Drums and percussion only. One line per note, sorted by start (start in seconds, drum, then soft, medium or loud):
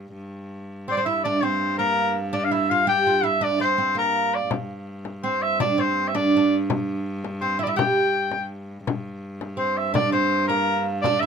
4.51 frame drum medium
5.05 frame drum medium
5.24 frame drum soft
5.60 frame drum medium
6.15 frame drum medium
6.33 frame drum soft
6.70 frame drum loud
7.24 frame drum medium
7.44 frame drum soft
7.79 frame drum loud
8.15 frame drum soft
8.32 frame drum medium
8.87 frame drum loud
9.41 frame drum medium
9.59 frame drum soft
9.95 frame drum loud
10.49 frame drum medium
10.69 frame drum soft
11.04 frame drum medium